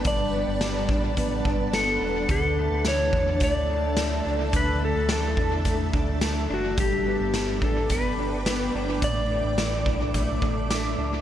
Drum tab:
HH |x-x-x-x-|x-x-x-x-|x-x-x-x-|x-x-x-x-|
TB |--x---x-|--x---x-|--x---x-|--x---x-|
SD |--o---o-|--o---o-|--o---o-|--o---o-|
BD |o--ooo--|o--oo---|o--ooo--|o--oo---|

HH |x-x-x-x-|
TB |--x---x-|
SD |--o---o-|
BD |o--ooo--|